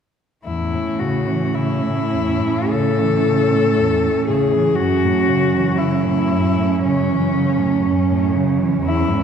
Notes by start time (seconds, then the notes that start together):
0.45 E2 A2 C#4 E4
0.73 A2
0.99 C#3 F#4
1.27 E3
1.54 C#3 E4
1.83 A2
2.13 E2
2.43 A2
2.70 C#3 A4
3.00 E3
3.27 C#3
3.54 A2
3.79 E2
4.04 A2
4.27 C#3 G#4
4.54 E3
4.76 F#2 C#4 F#4
5.04 A2
5.29 C#3
5.55 E3
5.78 C#3 E4
6.06 A2
6.32 F#2
6.57 A2
6.84 C#3 C#4
7.09 E3
7.35 C#3
7.60 A2
7.85 F#2
8.11 A2
8.35 C#3
8.60 E3
8.83 E2 E4
9.10 G#2